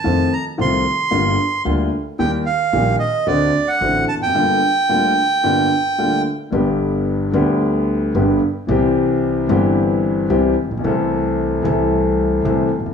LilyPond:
<<
  \new Staff \with { instrumentName = "Bandoneon" } { \time 4/4 \key g \minor \tempo 4 = 112 a''8 bes''8 c'''2 r4 | g''8 f''4 ees''8 d''8. fis''8. a''16 g''16~ | g''2.~ g''8 r8 | \key g \major r1 |
r1 | r1 | }
  \new Staff \with { instrumentName = "Grand piano" } { \clef bass \time 4/4 \key g \minor <f, ees f a c' f'>8 r8 <c, c ees a c' f'>8 r8 <g,, g, d g bes f'>8 r8 <d, d g bes f'>8 r8 | <ees, ees g bes g'>8 r8 <bes,, bes, ees g bes g'>8 r8 <d, d a c' fis'>8 r8 <a,, a, d a c' fis'>8 r32 e,32 f,32 fis,32 | <g,, g, d g bes f'>8 r8 <d, d g bes f'>8 r8 <g,, g, d g bes f'>8 r8 <d, d g bes f'>8 r8 | \key g \major <g,, g, d g b g'>4. <d, d g b g'>4. <g,, g, d g b g'>8 r8 |
<c, c e g c' g'>4. <g,, g, e g c' g'>4. <c, c e g c' g'>8 r32 a,,32 bes,,32 b,,32 | <c, c e a c' a'>4. <c, c e a c' a'>4. <c, c e a c' a'>8 r32 b,,32 c,32 r32 | }
  \new Staff \with { instrumentName = "Upright bass" } { \clef bass \time 4/4 \key g \minor f,16. r8 r32 c,16. r8 r32 g,,16. r8 r32 d,16. r8 r32 | ees,16. r8 r32 bes,,16. r8 r32 d,16. r8 r32 a,,16. r8 r32 | r1 | \key g \major g,,4~ g,,16. r32 d,4~ d,16. r32 g,,16. r8 r32 |
c,4~ c,16. r32 g,,4~ g,,16. r32 c,16. r16 a,,32 bes,,32 b,,32 | c,4~ c,16. r32 c,4~ c,16. r32 c,16. r16 b,,32 c,32 r32 | }
>>